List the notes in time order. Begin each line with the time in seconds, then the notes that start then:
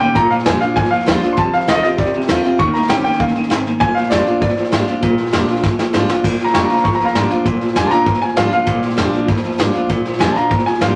Already playing: A#2
0.00 D#3 A#3 C#4 G4 G5, muted upright bass stroke, snare
0.15 A#1 A#2 F3 A#5, kick, snare
0.30 A#2 F3 F5, muted upright bass stroke, snare
0.39 snare
0.46 F2 A#2 F3 G3 G#3 D4 F4 G#5, snare, hi-hat pedal
0.61 A#2 F3 D4 F4 F5, muted upright bass stroke, snare
0.76 F2 G2 A#2 F3 G#5, kick, snare
0.84 snare
0.91 A#2 F3 F5, muted upright bass stroke, snare
1.00 snare
1.06 D#2 A#2 F3 G3 G#3 D4 F4, snare, hi-hat pedal
1.22 A#2 F3 D4 F4, muted upright bass stroke, snare
1.33 C6
1.37 F1 F2 C3 A5, kick, snare
1.53 F2 C3 F5, muted upright bass stroke, snare
1.61 snare
1.68 C2 F2 D3 D#3 A3 C4 F4 D#5 F5, snare, hi-hat pedal
1.76 D#5
1.82 F2 C3 C4 F4 D#5, snare
1.98 D2 F2 C3 D5, kick, snare
2.06 snare
2.14 F2 C3, muted upright bass stroke, snare
2.21 snare
2.28 D#2 F2 D3 D#3 A3 C4 F4, snare, hi-hat pedal
2.44 F2 C3 C4 F4, snare
2.59 D#2 D#3 A#3 C#6, kick, snare
2.74 D#3 A#3 A#5, muted upright bass stroke, snare
2.83 snare
2.88 A#2 D#3 G3 C4 C#4 G4 G5, snare, hi-hat pedal
3.04 D#3 A#3 C#4 G4 G5, muted upright bass stroke, snare
3.13 snare
3.20 C3 C#3 D#3 A#3 F5, kick, snare
3.28 snare
3.35 D#3 A#3, snare
3.44 snare
3.50 G#2 C#3 D#3 C4, snare, hi-hat pedal
3.66 D#3 A#3, muted upright bass stroke, snare
3.80 A#1 A#2 F3 G#5, kick, snare
3.95 A#2 F3 F5, muted upright bass stroke, snare
4.04 snare
4.10 F2 A#2 F3 G3 G#3 D4 F4 D5, snare, hi-hat pedal
4.27 A#2 F3 D4 F4, snare
4.41 F2 G2 A#2 F3 D5, kick, snare
4.49 snare
4.57 A#2 F3, muted upright bass stroke, snare
4.65 snare
4.72 G#2 A#2 F3 G3 G#3 D4 F4, snare, hi-hat pedal
4.87 A#2 F3 D4 F4, snare
5.03 A#1 A#2 F3, kick, snare
5.18 A#2 F3, snare
5.26 snare
5.32 F2 A#2 F3 G3 G#3 D4 F4, snare, hi-hat pedal
5.48 A#2 F3 D4 F4, snare
5.56 snare
5.63 F2 G2 A#2 F3, kick, snare
5.78 A#2 F3, muted upright bass stroke, snare
5.93 G#2 A#2 F3 G3 G#3 D4 F4, snare, hi-hat pedal
6.09 A#2 F3 D4 F4, snare
6.24 A#1 A#2 F3, kick, snare, crash
6.39 A#2 F3, snare
6.45 A#5, snare
6.54 F2 A#2 F3 G3 G#3 D4 F4 C#6, snare, hi-hat pedal
6.65 A#5
6.70 A#2 F3 D4 F4, snare
6.74 A#5, snare
6.84 F2 G2 A#2 F3 C#6, kick, snare
6.93 A#5, snare
7.00 A#2 F3, muted upright bass stroke, snare
7.05 F5 A#5, snare
7.15 G#2 A#2 F3 G3 G#3 D4 F4, snare, hi-hat pedal
7.30 A#2 F3 D4 F4, snare
7.45 A#1 A#2 F3, kick, snare
7.60 A#2 F3, muted upright bass stroke, snare
7.68 snare
7.76 F2 A#2 F3 G3 G#3 D4 F4 G#5, snare, hi-hat pedal
7.86 A5
7.91 A#2 F3 D4 F4 A#5, muted upright bass stroke, snare
8.06 F2 G2 A#2 F3, kick, snare
8.14 snare
8.21 A#2 F3 G#5, muted upright bass stroke, snare
8.29 snare
8.36 G#2 A#2 F3 G3 G#3 D4 F4 F5, snare, hi-hat pedal
8.51 A#2 F3 D4 F4 F5, snare
8.67 A#1 A#2 F3, kick, snare
8.82 A#2 F3, muted upright bass stroke, snare
8.90 snare
8.97 F2 A#2 F3 G3 G#3 D4 F4, snare, hi-hat pedal
9.13 A#2 F3, muted upright bass stroke, snare
9.28 F2 G2 A#2 F3, kick, snare
9.36 snare
9.44 A#2 F3, muted upright bass stroke, snare
9.52 snare
9.58 G#2 A#2 F3 G3 G#3 D4 F4, snare, hi-hat pedal
9.73 A#2 F3 D4 F4, snare
9.90 A#1 A#2 F3, kick, snare
10.05 A#2 F3, muted upright bass stroke, snare
10.13 snare
10.19 F2 A#2 F3 G3 G#3 D4 F4 G#5, snare, hi-hat pedal
10.32 A#2 F4 A5, snare
10.36 F3 D4 A#5, muted upright bass stroke
10.51 F2 G2 A#2 F3, kick, snare
10.59 snare
10.66 A#2 F3 G#5, muted upright bass stroke, snare
10.74 snare
10.81 G#2 A#2 F3 G3 G#3 D4 F4 F5, snare, hi-hat pedal